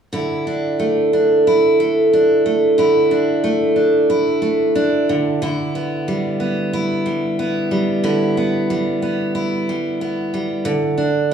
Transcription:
steel-string acoustic guitar
0.13 D3 E4
0.47 D4
0.80 A3
1.13 D4
1.47 E4
1.80 A3
2.13 D4
2.46 A3
2.78 D3 E4
3.11 D4
3.44 A3
3.76 D4
4.10 E4
4.42 A3
4.75 D4
5.09 D3
5.42 D3 E4
5.75 B3
6.08 G3
6.40 B3
6.73 E4
7.06 G3
7.39 B3
7.71 G3
8.04 D3 E4
8.37 B3
8.70 G3
9.02 B3
9.35 E4
9.69 G3
10.01 B3
10.34 G3
10.65 D3
10.98 D4

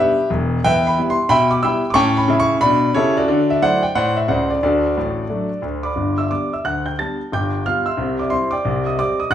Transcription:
grand piano
Already playing: G3 B3 D4 B4 E5
0.00 G4
0.30 E1 E2
0.64 E2 B4 E5 G5
0.87 B5
0.98 G3 B3 E4
1.10 C6
1.29 B2 E5 G5 B5
1.51 D6
1.63 G3 B3 E4 G5 B5 E6
1.90 A2 C#6 D6
1.95 C#4 G5 A5
2.17 B5
2.28 C#3 E4
2.40 C#6
2.61 B2 D4 B5
2.94 C#3 E4 G4 A4 C#5
3.17 F#4 A4 D5
3.28 D3
3.50 E5
3.61 F#3 A3 E4 C5 D5 F#5
3.83 G5
3.95 A2 C5 D5 F#5
4.17 E5
4.28 C#2 C#3 C5 D5 F#5
4.50 D5
4.63 D2 D3 F#4 A4 D5
4.97 A1 A2
5.30 F#3 A3 D4
5.62 D2 D3
5.83 D5 B5 D6
5.96 G1 G2
6.18 E5 E6
6.30 G3 B3 D4 D5 D6
6.53 E5 E6
6.65 D2 D3 F#5 F#6
6.86 G5 G6
6.99 G3 B3 D4 A5 A6
7.32 G1 G2 G5 D6 G6
7.66 G3 B3 F4 F5 F6
7.86 E5 C6 E6
7.97 C2 C3
8.19 D5 D6
8.30 G3 C4 E4 C5 C6
8.51 D5 G5 D6
8.65 C2 C3
8.86 D#5 D#6
8.98 G3 C4 G4 D5 D6
9.20 D#5 D#6
9.30 G1 G2 F#6

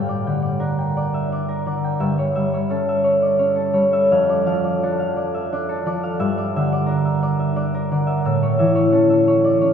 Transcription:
harp
Already playing: G2 D4 G5
0.09 D5
0.27 D3 G5
0.42 D5
0.59 D4 A#4
0.78 G5
0.97 D5
1.14 E5
1.32 D4 D5
1.48 A#4
1.66 D3 D5
1.84 G5
2.00 G2 E5
2.18 C#5
2.35 G3 E5
2.53 C#5
2.70 C#4 A4
2.89 E5
3.04 C#5
3.22 D5
3.39 C#4 C#5
3.56 A4
3.73 G3 C#5
3.93 E5
4.11 F2 F5
4.29 D5
4.46 F3 F5
4.64 D5
4.83 D4 A4
5.00 F5
5.16 D5
5.34 E5
5.52 D4 D5
5.69 A4
5.86 F3 D5
6.03 F5
6.19 G2 E5
6.38 D5
6.56 D3 E5
6.72 D5
6.86 D4 A#4
7.05 E5
7.23 D5
7.40 E5
7.56 D4 D5
7.74 A#4
7.91 D3 D5
8.07 E5
8.25 A2 E5
8.43 C#5
8.59 E3 E5
8.75 C#5
8.92 C#4 A4
9.10 E5
9.27 C#5
9.45 D5
9.61 C#4 C#5

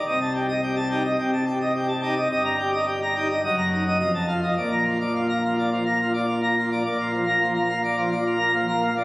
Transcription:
pipe organ
0.07 C1 C2 D#5
0.21 A5
0.35 G4
0.49 D#5
0.63 G4
0.76 A5
0.91 D#4 G4
1.05 D#5
1.19 C1 C2 G4
1.33 A5
1.46 G4
1.61 D#5
1.76 G4
1.88 A5
2.02 D#4 G4
2.17 D#5
2.31 G1 G2 D#5
2.44 A#5
2.59 G4
2.73 D#5
2.88 G4
3.02 A#5
3.16 D#4 G4
3.30 D#5
3.44 F#1 F#2 D#5
3.58 A#5
3.72 D#4
3.87 D#5
4.00 F1 F2 D#5
4.15 A5
4.28 F4
4.43 D#5
4.58 A#1 A#2 D5
4.72 A#5
4.86 F4
5.01 D5
5.16 F4
5.29 A#5
5.45 F4
5.59 D5
5.72 F3 F4
5.86 A#5
6.01 F4
6.14 D5
6.29 F4
6.43 A#5
6.57 F4
6.72 D5
6.85 A#1 A#2 D5
7.00 F4
7.13 F3
7.22 A#3
7.28 A#5
7.41 F3 F4
7.56 A#5
7.62 A#3
7.70 F5
7.84 D5
7.98 F3 F4
8.12 D5
8.26 F4
8.35 A#3 A#5
8.54 F3 F4
8.68 A#5
8.73 A#3
8.82 F5
8.97 D5

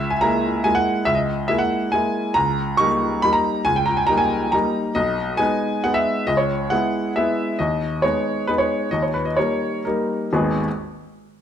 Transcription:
upright piano
Already playing: C#2 E5
0.10 G#5
0.21 G#3 A#3 E4 A#5
0.64 G#3 A#3 E4 G#5
0.75 F#5
1.05 C#2 E5
1.15 D#5
1.48 G#3 A#3 E4 E5
1.58 F#5
1.92 G#3 A#3 E4 G#5
2.34 C#2 A#5
2.77 G3 A#3 D#4 C#6
3.22 G3 A#3 D#4 B5
3.33 A#5
3.65 C#2 G#5
3.76 G5
3.86 A#5
3.97 G#5
4.07 G3 A#3 D#4 A#5
4.18 G#5
4.52 G3 A#3 D#4 A#5
4.95 B1 D#5
5.37 G#3 B3 D#4 G#5
5.84 G#3 B3 D#4 F#5
5.94 E5
6.27 C#2 D#5
6.37 C#5
6.70 G#3 B3 E4 F#5
7.16 G#3 B3 E4 E5
7.59 D#2 D#5
8.02 G#3 B3 D#4 C#5
8.47 G#3 B3 D#4 B4
8.58 C#5
8.91 D#2 D#5
9.02 C#5
9.14 B4
9.25 D#5
9.37 G3 A#3 D#4 C#5
9.85 G3 A#3 D#4 A#4
10.33 G#1 D#2 G#3 B3 D#4 G#4 B4

